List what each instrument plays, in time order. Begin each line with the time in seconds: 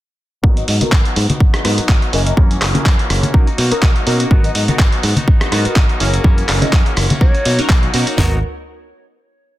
0.43 fingered electric bass G#1, clean electric guitar F#3 B3 D#4 F#4, analog polysynth B3 D#4 F#4 A#4, kick, tambourine, low conga
0.57 flute D#5, closed hi-hat
0.68 fingered electric bass G#2, flute D#5, open hi-hat, tambourine
0.80 analog polysynth B3 D#4 F#4 A#4, clean electric guitar B3 D#4 F#4, muted fingered electric bass stroke, closed hi-hat, tambourine, high conga
0.92 fingered electric bass G#1, kick, clap
1.05 closed hi-hat
1.16 fingered electric bass G#2, open hi-hat
1.29 clean electric guitar B3 D#4 F#4, closed hi-hat, tambourine, high conga
1.40 fingered electric bass G#1, kick
1.53 clean electric guitar B3 D#4 F#4, cross-stick, closed hi-hat
1.64 fingered electric bass G#2, clean electric guitar F#3 B3 D#4 F#4, analog polysynth B3 D#4 F#4 A#4, cross-stick, open hi-hat
1.78 muted fingered electric bass stroke, closed hi-hat
1.88 fingered electric bass G#1, clean electric guitar F#3 B3 F#4, kick, clap
2.02 closed hi-hat
2.12 fingered electric bass F#1, clean electric guitar E3 A#3 C#4 F#4, analog polysynth C#4 E4 G#4 A#4, flute D#5, open hi-hat
2.25 clean electric guitar A#3 C#4 F#4, flute D#5, closed hi-hat
2.37 fingered electric bass F#2, clean electric guitar E3 A#3 C#4 F#4, analog polysynth C#4 E4 G#4 A#4, kick, tambourine, low conga
2.51 closed hi-hat
2.61 fingered electric bass F#1, cross-stick, clap, open hi-hat, tambourine
2.74 clean electric guitar A#3 C#4 F#4, analog polysynth C#4 E4 G#4 A#4, muted fingered electric bass stroke, closed hi-hat, tambourine, high conga
2.85 fingered electric bass F#2, clean electric guitar E3, kick, clap
2.99 closed hi-hat
3.10 fingered electric bass F#1, cross-stick, open hi-hat
3.22 clean electric guitar A#3 C#4 F#4, closed hi-hat, tambourine, high conga
3.33 fingered electric bass B1, clean electric guitar F#3 A#3 D#4 F#4, analog polysynth C#4 D#4 F#4 A#4, kick
3.47 clean electric guitar A#3 D#4 F#4, closed hi-hat
3.57 fingered electric bass B2, clean electric guitar F#3 A#3 D#4 F#4, open hi-hat, tambourine
3.71 clean electric guitar A#3 D#4 F#4, analog polysynth C#4 D#4 F#4 A#4, muted fingered electric bass stroke, closed hi-hat
3.82 fingered electric bass B1, clean electric guitar F#3 A#3 D#4 F#4, kick, clap
3.96 closed hi-hat
4.06 fingered electric bass B2, clean electric guitar F#3 A#3 D#4 F#4, analog polysynth C#4 D#4 F#4 A#4, open hi-hat, tambourine
4.19 clean electric guitar A#3 D#4 F#4, closed hi-hat, tambourine
4.31 fingered electric bass G#1, clean electric guitar F#3 B3 D#4 F#4, analog polysynth B3 D#4 F#4 A#4, kick, tambourine, low conga
4.44 flute D#5, closed hi-hat
4.54 fingered electric bass G#2, flute D#5, open hi-hat, tambourine
4.68 analog polysynth B3 D#4 F#4 A#4, clean electric guitar B3 D#4 F#4, muted fingered electric bass stroke, closed hi-hat, tambourine, high conga
4.79 fingered electric bass G#1, clean electric guitar F#3 B3, kick, clap, tambourine
4.92 closed hi-hat
5.03 fingered electric bass G#2, open hi-hat, tambourine
5.16 clean electric guitar B3 D#4 F#4, closed hi-hat, tambourine, high conga
5.28 fingered electric bass G#1, kick, tambourine
5.40 clean electric guitar B3 D#4 F#4, cross-stick, closed hi-hat
5.51 fingered electric bass G#2, clean electric guitar F#3 B3 D#4 F#4, analog polysynth B3 D#4 F#4 A#4, cross-stick, open hi-hat, tambourine
5.64 clean electric guitar B3 D#4 F#4, muted fingered electric bass stroke, closed hi-hat, tambourine
5.76 fingered electric bass G#1, clean electric guitar F#3 B3 D#4 F#4, kick, clap
5.89 closed hi-hat
5.99 fingered electric bass F#1, clean electric guitar E3 A#3 C#4 F#4, analog polysynth C#4 E4 G#4 A#4, open hi-hat, tambourine
6.13 clean electric guitar A#3 C#4 F#4, closed hi-hat, tambourine
6.24 fingered electric bass F#2, clean electric guitar E3 F#4, analog polysynth C#4 E4 G#4 A#4, kick, tambourine, low conga
6.38 closed hi-hat
6.48 fingered electric bass F#1, cross-stick, clap, open hi-hat, tambourine
6.61 clean electric guitar A#3 C#4 F#4, analog polysynth C#4 E4 G#4 A#4, flute D#5, muted fingered electric bass stroke, closed hi-hat, tambourine, high conga
6.72 fingered electric bass F#2, clean electric guitar E3 A#3 C#4, kick, clap, tambourine
6.86 closed hi-hat
6.96 fingered electric bass F#1, cross-stick, open hi-hat, tambourine
7.09 clean electric guitar A#3 C#4 F#4, closed hi-hat, tambourine, high conga
7.20 fingered electric bass B1, clean electric guitar F#3 A#3 D#4 F#4, analog polysynth C#4 D#4 F#4 A#4, flute C#5, kick, tambourine
7.33 clean electric guitar A#3 D#4 F#4, closed hi-hat
7.44 fingered electric bass B2, clean electric guitar F#3 A#3 D#4 F#4, open hi-hat, tambourine
7.59 analog polysynth C#4 D#4 F#4 A#4, muted fingered electric bass stroke, closed hi-hat, tambourine
7.69 fingered electric bass B1, clean electric guitar F#3 F#4, kick, clap
7.83 closed hi-hat
7.93 fingered electric bass B2, clean electric guitar F#3 A#3 D#4 F#4, analog polysynth C#4 D#4 F#4 A#4, open hi-hat, tambourine
8.06 clean electric guitar A#3 D#4 F#4, closed hi-hat, tambourine
8.17 fingered electric bass G#1, clean electric guitar F#3 B3 D#4 F#4, analog polysynth B3 D#4 F#4 A#4, snare, floor tom